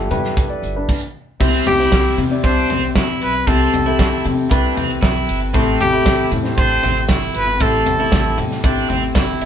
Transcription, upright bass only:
0.11 0.43 G2 loud
0.63 0.84 G1 medium
1.41 1.62 C2 loud
1.66 1.87 C2 loud
1.92 2.13 C2 medium
2.18 2.39 C3 loud
2.44 2.65 C2 loud
2.70 2.91 C2 medium
2.96 3.17 B1 medium
3.22 3.43 B1 medium
3.47 3.69 C2 loud
3.73 3.94 C2 medium
3.99 4.20 C2 medium
4.25 4.46 C3 loud
4.51 4.72 C2 medium
4.77 4.98 C2 medium
5.03 5.24 B1 medium
5.28 5.54 G1 medium
5.54 5.75 A1 loud
5.80 6.01 A1 medium
6.06 6.27 A1 loud
6.31 6.53 A2 loud
6.58 6.79 A1 loud
6.83 7.04 A1 loud
7.09 7.30 G1 medium
7.35 7.61 G1 medium
7.61 7.82 A1 loud
7.87 8.08 A1 medium
8.12 8.33 A1 medium
8.38 8.65 A2 loud
8.64 8.85 A1 loud
8.89 9.11 A1 medium
9.15 9.37 G1 medium
9.41 9.45 G1 medium

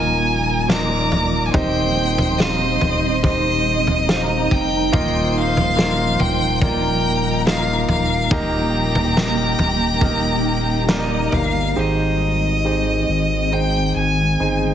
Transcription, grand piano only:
0.00 1.54 D#3 medium
0.00 0.69 A#3 loud
0.00 0.68 D#4 medium
0.00 0.69 F4 medium
0.00 0.69 A#4 medium
0.00 0.69 D#5 loud
0.68 1.49 A#3 medium
0.68 1.49 D#4 medium
0.68 1.49 F4 medium
0.68 1.49 A#4 medium
0.68 1.49 D#5 medium
1.54 2.78 D#3 medium
1.54 2.35 C4 medium
1.54 2.35 D#4 medium
1.54 2.35 G4 medium
1.54 2.35 C5 medium
1.54 2.35 D#5 loud
2.40 3.20 C4 medium
2.40 3.20 D#4 medium
2.40 3.20 G4 medium
2.40 3.20 C5 medium
2.40 3.20 F5 medium
3.23 4.04 C4 medium
3.23 4.04 D#4 medium
3.23 4.04 G4 medium
3.23 4.04 C5 medium
3.23 4.04 D#5 medium
4.08 4.89 C4 medium
4.08 4.89 D#4 medium
4.08 4.89 G4 medium
4.08 4.89 C5 medium
4.08 4.89 F5 medium
4.92 6.16 D#3 medium
4.92 5.73 A#3 medium
4.92 5.73 D#4 medium
4.92 5.73 F4 medium
4.92 5.73 A#4 medium
4.92 5.73 D#5 loud
5.76 6.57 A#3 medium
5.76 6.57 D#4 medium
5.76 6.57 F4 medium
5.76 6.57 A#4 medium
5.76 6.57 D#5 medium
6.61 7.42 A#3 medium
6.61 7.42 D#4 medium
6.61 7.42 F4 medium
6.61 7.42 A#4 medium
6.61 6.69 D5 medium
6.68 7.45 D#5 medium
7.46 8.27 A#3 medium
7.46 8.27 D#4 medium
7.46 8.27 F4 medium
7.46 8.27 A#4 medium
7.46 8.27 D#5 medium
8.32 9.55 A#2 medium
8.32 9.12 A#3 loud
8.32 9.12 D#4 medium
8.32 9.12 G4 medium
8.32 9.12 A#4 medium
8.32 9.12 D#5 loud
9.16 9.97 A#3 medium
9.16 9.97 D#4 medium
9.16 9.97 G4 medium
9.16 9.98 A#4 medium
9.16 9.97 D#5 medium
10.02 10.84 A#3 medium
10.02 10.84 D#4 medium
10.02 10.84 G4 medium
10.02 10.84 A#4 medium
10.02 10.84 D#5 medium
10.89 11.72 A#3 medium
10.89 11.73 D#4 medium
10.89 11.73 G4 medium
10.89 11.73 A#4 medium
10.89 10.96 D5 medium
10.97 11.76 D#5 medium
11.76 13.04 G#2 medium
11.76 13.04 D#3 medium
11.76 12.60 D#4 medium
11.76 12.60 G4 medium
11.76 12.60 G#4 medium
11.76 12.60 C5 medium
12.65 13.48 D#4 medium
12.65 13.48 G4 medium
12.65 13.48 G#4 medium
12.65 13.49 C5 medium
13.52 14.35 D#4 medium
13.52 14.35 G#4 medium
13.52 14.36 C5 medium
14.40 14.74 D#4 medium
14.40 14.74 G#4 medium
14.40 14.74 C5 medium

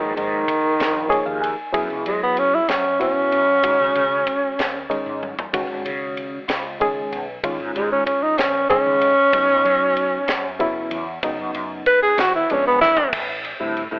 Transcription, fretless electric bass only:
0.00 0.13 G#2 medium
0.17 0.43 G#2 medium
0.65 muted fretless electric bass stroke soft
0.80 1.06 A#1 loud
1.26 1.53 D#2 medium
1.74 1.87 F#2 medium
1.90 2.03 C#2 loud
2.06 2.59 F#3 medium
2.69 3.21 F#2 loud
3.32 3.58 F#2 medium
3.64 3.77 G#2 loud
3.80 3.93 C#3 medium
3.95 4.22 C#3 medium
4.43 muted fretless electric bass stroke soft
4.59 4.85 D#2 loud
5.06 5.32 G#2 medium
5.54 5.67 C#2 medium
5.70 5.83 G#1 medium
5.85 6.38 C#3 medium
6.48 7.01 C#2 loud
7.12 7.38 B1 medium
7.44 7.57 D#2 loud
7.60 7.73 G#2 medium
7.75 8.01 G#2 medium
8.22 muted fretless electric bass stroke soft
8.38 8.64 A#1 loud
8.86 9.12 D#2 medium
9.34 9.46 F#2 loud
9.49 9.62 C#2 medium
9.64 10.17 F#3 medium
10.28 10.81 F#2 loud
10.91 11.18 E2 medium
11.23 11.36 C#2 loud
11.39 11.52 F#2 medium
11.55 11.81 F#2 medium
12.02 muted fretless electric bass stroke soft
12.18 12.44 E2 loud
12.65 12.92 A#1 medium
13.13 13.52 A1 loud
13.61 13.87 A2 medium
13.91 13.99 A2 medium

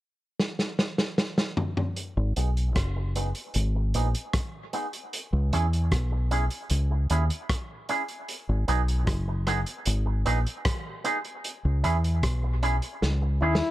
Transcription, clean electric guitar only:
2.36 2.48 B3 medium
2.36 2.49 D#4 medium
2.36 2.49 G#4 medium
2.96 muted clean electric guitar stroke medium
3.16 3.28 B3 medium
3.16 3.28 D#4 medium
3.16 3.28 G#4 medium
3.75 muted clean electric guitar stroke soft
3.95 4.07 B3 medium
3.95 4.07 D#4 medium
3.95 4.07 G#4 medium
4.73 4.85 B3 medium
4.73 4.86 D#4 medium
4.73 4.86 G#4 medium
5.53 5.65 C#4 medium
5.53 5.65 E4 medium
5.53 5.65 G#4 medium
6.12 muted clean electric guitar stroke medium
6.31 6.43 C#4 medium
6.31 6.44 E4 medium
6.31 6.44 G#4 medium
6.91 muted clean electric guitar stroke medium
7.10 7.22 C#4 medium
7.10 7.23 E4 medium
7.10 7.23 G#4 medium
7.89 8.01 C#4 medium
7.89 8.02 E4 medium
7.89 8.02 G#4 loud
8.68 8.80 B3 medium
8.68 8.80 D#4 medium
8.68 8.81 G#4 medium
9.28 muted clean electric guitar stroke medium
9.47 9.59 B3 medium
9.47 9.59 D#4 medium
9.47 9.60 G#4 medium
10.06 muted clean electric guitar stroke medium
10.26 10.38 B3 medium
10.26 10.38 D#4 loud
10.26 10.38 G#4 medium
11.04 11.17 B3 medium
11.04 11.17 D#4 medium
11.04 11.17 G#4 medium
11.83 11.96 C#4 medium
11.83 11.96 E4 medium
11.83 11.96 G#4 medium
12.43 muted clean electric guitar stroke medium
12.63 12.75 C#4 medium
12.63 12.75 E4 medium
12.63 12.75 G#4 medium
13.22 muted clean electric guitar stroke soft
13.42 13.54 C#4 medium
13.42 13.54 E4 medium
13.42 13.55 G#4 medium

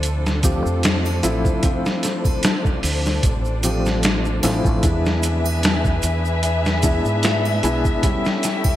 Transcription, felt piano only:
0.00 0.39 F3 medium
0.00 0.40 A3 medium
0.00 0.40 C4 medium
0.00 0.40 E4 medium
0.43 1.19 F3 medium
0.43 1.19 A3 medium
0.43 1.19 C4 medium
0.43 1.19 G4 medium
1.23 1.59 F3 medium
1.23 1.59 A3 medium
1.23 1.59 C4 medium
1.23 1.59 E4 loud
1.63 3.59 F3 medium
1.63 3.60 A3 medium
1.63 3.60 C4 medium
1.63 3.60 E4 medium
3.63 4.39 F3 medium
3.63 4.39 A3 medium
3.63 4.39 C4 medium
3.63 4.39 G4 medium
4.43 4.79 F3 medium
4.43 4.79 A3 medium
4.43 4.79 C4 medium
4.43 4.79 E4 loud
4.82 6.79 G#3 medium
4.82 6.80 B3 medium
4.82 6.80 D4 medium
4.82 6.80 E4 medium
6.83 7.59 G#3 medium
6.83 7.59 B3 medium
6.83 7.59 D4 medium
6.83 7.59 E4 medium
7.63 7.99 G#3 medium
7.63 7.99 B3 medium
7.63 7.99 D4 medium
7.63 7.99 E4 loud
8.02 8.76 G3 medium
8.02 8.76 B3 medium
8.02 8.76 C#4 medium
8.02 8.76 E4 medium

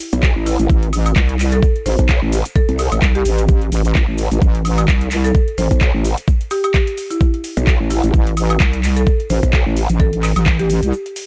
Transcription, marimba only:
0.46 0.93 E4 medium
1.52 1.84 A4 loud
1.86 2.32 C5 medium
2.56 2.70 A4 medium
3.15 3.49 G4 medium
5.24 5.56 A4 loud
5.58 6.05 C5 loud
6.51 6.59 G4 medium
6.64 6.71 G4 medium
7.11 7.22 E4 medium
7.90 8.37 E4 medium
8.97 9.28 A4 loud
9.30 9.77 C5 medium
10.00 10.14 A4 medium
10.59 10.93 G4 medium

